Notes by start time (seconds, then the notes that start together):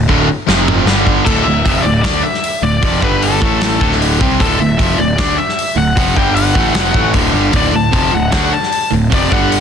0.08 D1 D2 A2 D3, kick
0.47 F1 F2 C3 F3, snare
0.68 mid tom
0.86 G1 G2 D3 G3, snare
1.07 kick
1.25 D1 D2 A2 D3 A4, kick, crash
1.43 D1 D2 A2 E5
1.66 F1 F2 C3 F3, kick, open hi-hat
1.82 D1 D2 A2 D5
2.02 D2 D3 A3 D4 D5, kick, snare, open hi-hat
2.23 E5
2.34 snare
2.44 open hi-hat
2.62 D1 D2 A2 D5
2.82 F1 F2 C3 F3, kick, open hi-hat
3.02 G1 G2 D3 G3 B4, kick
3.22 A4, open hi-hat
3.41 A1 A2 E3 A3, kick
3.61 snare, open hi-hat
3.81 D1 D2 A2 D3, kick
3.92 snare
4.02 open hi-hat
4.20 C2 C3 G3 C4, kick
4.40 D1 D2 A2 D3 A4, kick, open hi-hat
4.60 D1 D2 A2 E5
4.79 F1 F2 C3 F3, kick, open hi-hat
4.98 D1 D2 A2 D5
5.18 D2 D3 A3 D4 D5, kick, snare, open hi-hat
5.38 E5
5.49 snare
5.59 open hi-hat
5.76 D1 D2 A2 F#5
5.97 F1 F2 C3 F3, kick, open hi-hat
6.17 G1 G2 D3 G3 G5, kick
6.35 F#5, open hi-hat
6.55 A1 A2 E3 A3, kick
6.74 F1 F2 C3 F3, snare, open hi-hat
6.94 A1 A2 E3 A3, kick
7.14 D1 D2 A2 D3, kick, open hi-hat
7.33 G1 G2 D3 G3
7.53 D1 D2 A2 D3 D5, kick, open hi-hat
7.73 D1 D2 A2 A5
7.92 F1 F2 C3 F3, kick, open hi-hat
8.13 D1 D2 A2 F#5
8.32 D2 D3 A3 D4 F#5, kick, snare, open hi-hat
8.53 A5
8.63 snare
8.72 open hi-hat
8.92 D1 D2 A2
9.12 F1 F2 C3 F3 D5, kick, open hi-hat
9.31 G1 G2 D3 G3 F#5, kick
9.52 open hi-hat